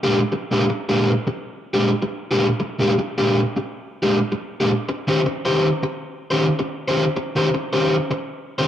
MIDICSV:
0, 0, Header, 1, 3, 480
1, 0, Start_track
1, 0, Tempo, 569260
1, 110, Time_signature, 4, 2, 24, 8
1, 7316, End_track
2, 0, Start_track
2, 0, Title_t, "Overdriven electric guitar"
2, 0, Program_c, 0, 29
2, 29, Note_on_c, 0, 67, 99
2, 35, Note_on_c, 0, 62, 97
2, 37, Note_on_c, 0, 56, 78
2, 39, Note_on_c, 0, 46, 82
2, 156, Note_off_c, 0, 67, 0
2, 160, Note_off_c, 0, 62, 0
2, 161, Note_off_c, 0, 46, 0
2, 161, Note_off_c, 0, 56, 0
2, 432, Note_on_c, 0, 46, 85
2, 436, Note_on_c, 0, 56, 87
2, 439, Note_on_c, 0, 62, 97
2, 441, Note_on_c, 0, 67, 88
2, 534, Note_off_c, 0, 46, 0
2, 536, Note_off_c, 0, 56, 0
2, 537, Note_off_c, 0, 62, 0
2, 538, Note_off_c, 0, 67, 0
2, 750, Note_on_c, 0, 67, 81
2, 753, Note_on_c, 0, 56, 68
2, 753, Note_on_c, 0, 62, 78
2, 758, Note_on_c, 0, 46, 72
2, 937, Note_off_c, 0, 67, 0
2, 938, Note_off_c, 0, 56, 0
2, 938, Note_off_c, 0, 62, 0
2, 941, Note_off_c, 0, 46, 0
2, 1464, Note_on_c, 0, 67, 80
2, 1472, Note_on_c, 0, 62, 75
2, 1473, Note_on_c, 0, 56, 82
2, 1477, Note_on_c, 0, 46, 69
2, 1594, Note_off_c, 0, 67, 0
2, 1598, Note_off_c, 0, 56, 0
2, 1598, Note_off_c, 0, 62, 0
2, 1600, Note_off_c, 0, 46, 0
2, 1948, Note_on_c, 0, 67, 102
2, 1950, Note_on_c, 0, 62, 92
2, 1953, Note_on_c, 0, 56, 86
2, 1960, Note_on_c, 0, 46, 76
2, 2076, Note_off_c, 0, 67, 0
2, 2077, Note_off_c, 0, 62, 0
2, 2079, Note_off_c, 0, 56, 0
2, 2082, Note_off_c, 0, 46, 0
2, 2352, Note_on_c, 0, 46, 89
2, 2359, Note_on_c, 0, 56, 81
2, 2361, Note_on_c, 0, 62, 90
2, 2364, Note_on_c, 0, 67, 96
2, 2453, Note_off_c, 0, 46, 0
2, 2457, Note_off_c, 0, 56, 0
2, 2458, Note_off_c, 0, 62, 0
2, 2460, Note_off_c, 0, 67, 0
2, 2681, Note_on_c, 0, 67, 84
2, 2684, Note_on_c, 0, 62, 75
2, 2687, Note_on_c, 0, 56, 61
2, 2691, Note_on_c, 0, 46, 67
2, 2862, Note_off_c, 0, 67, 0
2, 2864, Note_off_c, 0, 62, 0
2, 2865, Note_off_c, 0, 56, 0
2, 2867, Note_off_c, 0, 46, 0
2, 3394, Note_on_c, 0, 67, 84
2, 3398, Note_on_c, 0, 62, 84
2, 3403, Note_on_c, 0, 56, 75
2, 3404, Note_on_c, 0, 46, 65
2, 3519, Note_off_c, 0, 67, 0
2, 3522, Note_off_c, 0, 62, 0
2, 3524, Note_off_c, 0, 56, 0
2, 3525, Note_off_c, 0, 46, 0
2, 3881, Note_on_c, 0, 67, 98
2, 3888, Note_on_c, 0, 62, 81
2, 3891, Note_on_c, 0, 46, 83
2, 3891, Note_on_c, 0, 56, 81
2, 3954, Note_off_c, 0, 67, 0
2, 3958, Note_off_c, 0, 62, 0
2, 3959, Note_off_c, 0, 46, 0
2, 3959, Note_off_c, 0, 56, 0
2, 4280, Note_on_c, 0, 51, 83
2, 4284, Note_on_c, 0, 61, 85
2, 4288, Note_on_c, 0, 67, 86
2, 4292, Note_on_c, 0, 72, 80
2, 4378, Note_off_c, 0, 51, 0
2, 4381, Note_off_c, 0, 61, 0
2, 4383, Note_off_c, 0, 67, 0
2, 4384, Note_off_c, 0, 72, 0
2, 4598, Note_on_c, 0, 72, 83
2, 4600, Note_on_c, 0, 67, 74
2, 4606, Note_on_c, 0, 61, 64
2, 4609, Note_on_c, 0, 51, 63
2, 4782, Note_off_c, 0, 72, 0
2, 4783, Note_off_c, 0, 67, 0
2, 4786, Note_off_c, 0, 61, 0
2, 4787, Note_off_c, 0, 51, 0
2, 5317, Note_on_c, 0, 72, 83
2, 5324, Note_on_c, 0, 67, 74
2, 5326, Note_on_c, 0, 61, 73
2, 5327, Note_on_c, 0, 51, 73
2, 5442, Note_off_c, 0, 72, 0
2, 5445, Note_off_c, 0, 67, 0
2, 5446, Note_off_c, 0, 61, 0
2, 5447, Note_off_c, 0, 51, 0
2, 5801, Note_on_c, 0, 72, 101
2, 5808, Note_on_c, 0, 67, 83
2, 5811, Note_on_c, 0, 61, 84
2, 5812, Note_on_c, 0, 51, 76
2, 5924, Note_off_c, 0, 72, 0
2, 5927, Note_off_c, 0, 67, 0
2, 5929, Note_off_c, 0, 51, 0
2, 5929, Note_off_c, 0, 61, 0
2, 6203, Note_on_c, 0, 51, 85
2, 6206, Note_on_c, 0, 61, 83
2, 6208, Note_on_c, 0, 67, 86
2, 6213, Note_on_c, 0, 72, 92
2, 6301, Note_off_c, 0, 51, 0
2, 6302, Note_off_c, 0, 61, 0
2, 6304, Note_off_c, 0, 67, 0
2, 6306, Note_off_c, 0, 72, 0
2, 6517, Note_on_c, 0, 72, 78
2, 6520, Note_on_c, 0, 67, 77
2, 6524, Note_on_c, 0, 61, 71
2, 6526, Note_on_c, 0, 51, 66
2, 6702, Note_off_c, 0, 72, 0
2, 6704, Note_off_c, 0, 67, 0
2, 6706, Note_off_c, 0, 51, 0
2, 6706, Note_off_c, 0, 61, 0
2, 7238, Note_on_c, 0, 72, 83
2, 7239, Note_on_c, 0, 67, 80
2, 7245, Note_on_c, 0, 51, 75
2, 7246, Note_on_c, 0, 61, 74
2, 7316, Note_off_c, 0, 51, 0
2, 7316, Note_off_c, 0, 61, 0
2, 7316, Note_off_c, 0, 67, 0
2, 7316, Note_off_c, 0, 72, 0
2, 7316, End_track
3, 0, Start_track
3, 0, Title_t, "Muted overdriven electric guitar strokes"
3, 271, Note_on_c, 9, 29, 46
3, 355, Note_off_c, 9, 29, 0
3, 585, Note_on_c, 9, 29, 47
3, 670, Note_off_c, 9, 29, 0
3, 1070, Note_on_c, 9, 29, 50
3, 1154, Note_off_c, 9, 29, 0
3, 1706, Note_on_c, 9, 29, 54
3, 1790, Note_off_c, 9, 29, 0
3, 2191, Note_on_c, 9, 29, 46
3, 2275, Note_off_c, 9, 29, 0
3, 2515, Note_on_c, 9, 29, 44
3, 2599, Note_off_c, 9, 29, 0
3, 3004, Note_on_c, 9, 29, 45
3, 3089, Note_off_c, 9, 29, 0
3, 3643, Note_on_c, 9, 29, 47
3, 3727, Note_off_c, 9, 29, 0
3, 4120, Note_on_c, 9, 29, 49
3, 4205, Note_off_c, 9, 29, 0
3, 4434, Note_on_c, 9, 29, 46
3, 4518, Note_off_c, 9, 29, 0
3, 4914, Note_on_c, 9, 29, 50
3, 4998, Note_off_c, 9, 29, 0
3, 5558, Note_on_c, 9, 29, 52
3, 5642, Note_off_c, 9, 29, 0
3, 6042, Note_on_c, 9, 29, 50
3, 6126, Note_off_c, 9, 29, 0
3, 6359, Note_on_c, 9, 29, 44
3, 6443, Note_off_c, 9, 29, 0
3, 6834, Note_on_c, 9, 29, 45
3, 6919, Note_off_c, 9, 29, 0
3, 7316, End_track
0, 0, End_of_file